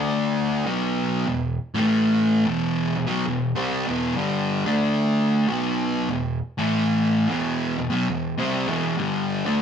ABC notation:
X:1
M:4/4
L:1/16
Q:"Swing" 1/4=100
K:Em
V:1 name="Distorted electric guitar" clef=bass
[D,A,D]4 [B,,F,B,]4 [E,,B,,]2 z [A,,E,A,]4- [A,,E,A,] | [E,,B,,E,]3 [E,,B,,] [B,,F,] [E,,B,,]2 [C,G,C]2 [E,,B,,E,]2 [G,,D,G,]3 [D,A,D]2- | [D,A,D]4 [B,,F,B,]4 [E,,B,,]2 z [A,,E,A,]4- [A,,E,A,] | [E,,B,,E,]3 [E,,B,,] [B,,F,] [E,,B,,]2 [C,G,C]2 [E,,B,,E,]2 [G,,D,G,]3 [D,A,D]2 |]